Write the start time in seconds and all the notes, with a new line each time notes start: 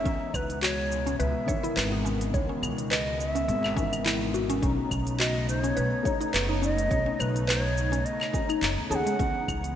Already playing: E5
0.03 C#2 B2 C#3 E3 G#3 B3 C#4 D#4, kick, open hi-hat, cabasa
0.34 C#2 B4, kick, cabasa, claves
0.50 open hi-hat, cabasa
0.62 F#4 C#5, clap, open hi-hat, cabasa
0.92 cabasa
1.06 C#4, open hi-hat, cabasa
1.19 C#2 B4 E5, open hi-hat, cabasa
1.46 E3 B3 C#5, kick, cabasa
1.50 D#3
1.63 E4, open hi-hat, cabasa
1.76 G#1 B4, clap, open hi-hat, cabasa
1.92 D#4
2.05 C#4, cabasa
2.21 open hi-hat, cabasa
2.32 C#2 E3 B3 C#5, kick, open hi-hat, cabasa
2.36 D#3
2.49 C#4
2.62 C#2, cabasa, claves
2.78 open hi-hat, cabasa
2.91 B4 D#5, clap, open hi-hat, cabasa
3.20 E5, cabasa
3.35 C#4, open hi-hat, cabasa
3.48 G#1, open hi-hat, cabasa
3.64 clap, claves
3.75 D#3 E3 B3 C#4, kick, cabasa
3.93 open hi-hat, cabasa, claves
4.05 E4, clap, open hi-hat, cabasa
4.34 F#4, cabasa
4.50 C#4, open hi-hat, cabasa
4.61 B1 A3 C#4 D#4, kick, open hi-hat, cabasa
4.65 D#4
4.91 B1, kick, cabasa, claves
5.07 open hi-hat, cabasa
5.20 F#4 D#5, clap, open hi-hat, cabasa
5.49 C5, cabasa
5.64 C#4 C#5, open hi-hat, cabasa
5.77 B1 B4, open hi-hat, cabasa
6.03 A3 C#4 D#4 C#5, kick, cabasa
6.21 D#4, open hi-hat, cabasa
6.33 F#1 B4, clap, open hi-hat, cabasa
6.49 D#4
6.62 C#4 D#5, cabasa
6.78 open hi-hat, cabasa
6.89 B1 A3 C#4 D#4 C#5, kick, open hi-hat, cabasa
7.06 C#4
7.19 B1 B4, cabasa, claves
7.36 open hi-hat, cabasa
7.48 B4 C#5, clap, open hi-hat, cabasa
7.78 cabasa
7.92 C#4, open hi-hat, cabasa
8.05 D#5, open hi-hat, cabasa
8.21 clap, claves
8.33 A3 C#4 D#4, kick, cabasa
8.49 D#4, open hi-hat, cabasa, claves
8.62 F#1, clap, open hi-hat, cabasa
8.78 D#2
8.89 D#2 A3 C#4 G#4 A5, cabasa
8.95 F#5
9.06 G#3, open hi-hat, cabasa
9.17 C#2 E3 G#3 B3 C#4, kick, open hi-hat, cabasa
9.21 D#4
9.48 C#2, kick, cabasa, claves
9.64 open hi-hat, cabasa